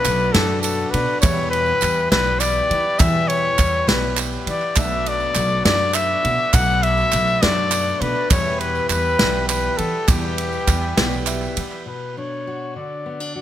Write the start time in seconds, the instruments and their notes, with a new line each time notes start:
Already playing: felt piano B1 B2 F#3 B3 D4 A4 B4, harmonium D4 F#4 B4 A5, trumpet B4
0.04 upright bass B1, steel-string acoustic guitar F#3 A3 D4 F#4, clap, ride, tambourine
0.19 tambourine
0.32 upright bass F#2, steel-string acoustic guitar B2 F#3 A3 D4 F#4, trumpet A4, snare, ride
0.50 clap
0.62 trumpet A4, ride, tambourine
0.91 upright bass B2, steel-string acoustic guitar D4 F#4, trumpet B4, ride
0.96 steel-string acoustic guitar A3
1.21 steel-string acoustic guitar E2 B2 E3 G3 B3 G4, upright bass E2, felt piano E2 E3 G3 B3 E4 B4 E5, trumpet C#5, kick, clap, ride, tambourine
1.25 harmonium G4 E5 B5
1.50 trumpet B4, ride
1.66 tambourine
1.81 upright bass E2, steel-string acoustic guitar E3 G3 B3 G4, clap, ride, tambourine
2.11 upright bass B1, steel-string acoustic guitar E2 B2 E3 G3 B3 G4, trumpet B4, snare, ride
2.27 clap
2.39 trumpet D5, clap, ride, tambourine
2.69 upright bass E3, steel-string acoustic guitar E3 G3 B3 G4, ride
2.98 steel-string acoustic guitar E2 B2 E3 G3 B3 G4, felt piano E2 E3, upright bass E2, trumpet E5, kick, clap, ride, tambourine
3.28 trumpet C#5, ride
3.58 upright bass E2, steel-string acoustic guitar E3 G3 B3 G4, kick, clap, ride, tambourine
3.88 upright bass B1, steel-string acoustic guitar E2 B2 E3 G3 B3 G4, trumpet B4, snare, clap, ride, tambourine
4.17 clap, ride, tambourine
4.32 tambourine
4.47 upright bass E3, steel-string acoustic guitar E3 G3 B3 G4, trumpet D5, ride, tambourine
4.62 clap
4.75 upright bass B1, felt piano B1 B2 F#3 B3 D4 A4 D5, steel-string acoustic guitar B2 F#3 A3 D4 F#4, harmonium F#4 B4 D5 A5, trumpet E5, kick, clap, ride, tambourine
5.06 trumpet D5, ride
5.20 tambourine
5.35 upright bass B1, steel-string acoustic guitar F#3 A3 D4 F#4, clap, ride, tambourine
5.50 tambourine
5.65 upright bass F#2, steel-string acoustic guitar B2 F#3 A3 D4 F#4, trumpet D5, snare, ride
5.94 trumpet E5, clap, ride, tambourine
6.23 upright bass B2, steel-string acoustic guitar A3 D4 F#4, ride
6.53 upright bass B1, felt piano B1 B2, steel-string acoustic guitar B2 F#3 A3 D4 F#4, trumpet F#5, kick, clap, ride, tambourine
6.83 trumpet E5, ride
6.98 tambourine
7.12 upright bass B1, steel-string acoustic guitar F#3 A3 D4 F#4, clap, ride, tambourine
7.28 tambourine
7.42 upright bass F#2, steel-string acoustic guitar B2 F#3 A3 D4 F#4, trumpet D5, snare, ride
7.57 clap
7.72 clap, ride, tambourine
8.01 upright bass B2, steel-string acoustic guitar A3 D4 F#4, trumpet B4, ride
8.30 upright bass E2, felt piano E2 E3 G3 B3 E4 B4 E5, steel-string acoustic guitar E2 B2 E3 G3 B3 G4, harmonium G4 E5 B5, trumpet C#5, kick, clap, ride, tambourine
8.60 trumpet B4, ride
8.75 tambourine
8.89 upright bass E2, steel-string acoustic guitar E3 G3 B3 G4, trumpet B4, clap, ride, tambourine
9.05 tambourine
9.19 upright bass B1, steel-string acoustic guitar E2 B2 E3 G3 B3 G4, snare, ride
9.34 clap
9.49 trumpet B4, clap, ride, tambourine
9.77 upright bass E3, steel-string acoustic guitar B3 G4, trumpet A4, ride
9.82 steel-string acoustic guitar E3 G3
10.08 felt piano E2 E3, upright bass E2, steel-string acoustic guitar E2 B2 E3 G3 B3 G4, trumpet G4, kick, clap, ride, tambourine
10.23 clap
10.38 ride
10.53 tambourine
10.68 upright bass E2, steel-string acoustic guitar E3 G3 B3 G4, kick, clap, ride, tambourine
10.83 clap
10.97 upright bass B1, steel-string acoustic guitar E2 B2 E3 G3 B3 G4, snare, ride
11.12 clap, tambourine
11.27 felt piano E5, clap, ride, tambourine
11.42 clap, tambourine
11.56 upright bass E3, steel-string acoustic guitar E3 G3 B3 G4, ride, tambourine
11.72 clap
11.86 steel-string acoustic guitar B2, trumpet B4
12.17 steel-string acoustic guitar D4, trumpet C#5
12.47 steel-string acoustic guitar F#4
12.76 steel-string acoustic guitar D3, trumpet D5
13.06 steel-string acoustic guitar B3
13.20 steel-string acoustic guitar D4
13.35 steel-string acoustic guitar F#4, trumpet D5